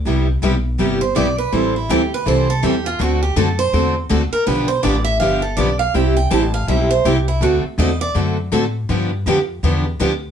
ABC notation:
X:1
M:4/4
L:1/16
Q:"Swing" 1/4=163
K:C
V:1 name="Steel-string acoustic guitar"
z8 z2 c2 d2 B2 | c2 E2 G2 B2 c2 A2 G2 F2 | ^F2 G2 A2 c4 z4 _B2 | B2 c2 d2 e2 f2 A2 d2 f2 |
e2 g2 a2 f2 e2 c2 G2 E2 | ^F2 z2 _e2 d2 z8 | z16 |]
V:2 name="Steel-string acoustic guitar"
[C,G,B,EG]2 z2 [C,G,B,EG] z3 [C,G,B,EG]2 z2 [C,G,B,EG] z3 | [E,G,CEA]2 z2 [E,G,CEA] z3 [E,G,CEA]2 z2 [E,G,CEA] z3 | [D,A,C^FA]2 z2 [D,A,CFA] z3 [D,A,CFA]2 z2 [D,A,CFA] z3 | [D,F,B,DG]2 z2 [D,F,B,DG] z3 [D,F,B,DG]2 z2 [D,F,B,DG] z3 |
[C,G,CEG]2 z2 [C,G,CEG] z3 [C,G,CEG]2 z2 [C,G,CEG] z3 | [D,A,C^FA]2 z2 [D,A,CFA] z3 [D,A,CFA]2 z2 [D,A,CFA] z3 | [D,F,B,DG]2 z2 [D,F,B,DG] z3 [D,F,B,DG]2 z2 [D,F,B,DG] z3 |]
V:3 name="Steel-string acoustic guitar"
[C,G,B,EG]2 z2 [C,G,B,EG] z3 [C,G,B,EG]2 z2 [C,G,B,EG] z3 | [E,G,CEA]2 z2 [E,G,CEA] z3 [E,G,CEA]2 z2 [E,G,CEA] z3 | [D,A,C^FA]2 z2 [D,A,CFA] z3 [D,A,CFA]2 z2 [D,A,CFA] z3 | [D,F,B,DG]2 z2 [D,F,B,DG] z3 [D,F,B,DG]2 z2 [D,F,B,DG] z3 |
[C,G,CEG]2 z2 [C,G,CEG] z3 [C,G,CEG]2 z2 [C,G,CEG] z3 | [D,A,C^FA]2 z2 [D,A,CFA] z3 [D,A,CFA]2 z2 [D,A,CFA] z3 | [D,F,B,DG]2 z2 [D,F,B,DG] z3 [D,F,B,DG]2 z2 [D,F,B,DG] z3 |]
V:4 name="Upright bass" clef=bass
C,,4 B,,,4 G,,,4 B,,,4 | A,,,4 D,,4 C,,4 E,,4 | D,,4 ^F,,4 E,,4 D,,2 z2 | B,,,4 A,,,4 G,,,4 B,,,4 |
C,,4 A,,,4 B,,,4 C,,4 | D,,2 z2 E,,4 ^F,,4 A,,4 | G,,4 F,,4 E,,4 D,,4 |]